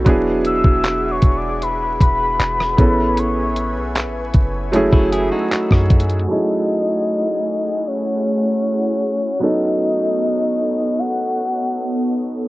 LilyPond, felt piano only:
\new Staff \with { instrumentName = "Felt piano" } { \time 4/4 \key fis \dorian \tempo 4 = 77 <fis b d' e' gis'>2.~ <fis b d' e' gis'>8 <b cis' e' gis' a'>8~ | <b cis' e' gis' a'>2 <fis a cis' e' gis'>2 | <fis a cis' e' gis'>1 | <fis b cis' dis' a'>1 | }